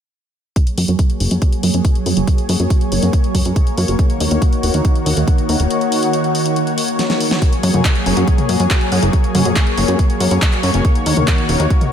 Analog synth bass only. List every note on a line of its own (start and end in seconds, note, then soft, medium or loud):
0.78 0.85 F#2 medium
0.88 0.96 F#2 medium
1.20 1.28 F#1 medium
1.31 1.39 F#2 medium
1.63 1.71 F#2 medium
1.74 1.81 F#2 medium
2.06 2.13 F#2 medium
2.17 2.24 F#1 medium
2.49 2.56 F#2 medium
2.60 2.67 F#2 medium
2.92 2.99 F#1 medium
3.03 3.10 F#2 medium
3.35 3.42 F#2 medium
3.46 3.53 F#2 medium
3.78 3.85 F#2 medium
3.88 3.96 F#1 medium
4.20 4.28 D#2 medium
4.31 4.39 D#2 medium
4.63 4.71 D#1 medium
4.74 4.81 D#2 medium
5.06 5.14 D#2 medium
5.17 5.24 D#2 medium
5.49 5.56 D#2 medium
5.60 5.67 D#1 medium
7.63 7.71 F#2 loud
7.74 7.81 F#2 medium
8.06 8.14 F#1 medium
8.17 8.24 F#2 medium
8.49 8.56 F#2 medium
8.60 8.67 F#2 medium
8.92 8.99 F#2 loud
9.03 9.10 F#1 medium
9.35 9.42 F#2 loud
9.46 9.53 F#2 medium
9.78 9.85 F#1 medium
9.88 9.96 F#2 medium
10.20 10.28 F#2 medium
10.31 10.39 F#2 medium
10.63 10.71 F#2 medium
10.74 10.81 F#1 medium
11.06 11.14 D#2 loud
11.17 11.24 D#2 medium
11.49 11.56 D#1 medium
11.60 11.67 D#2 medium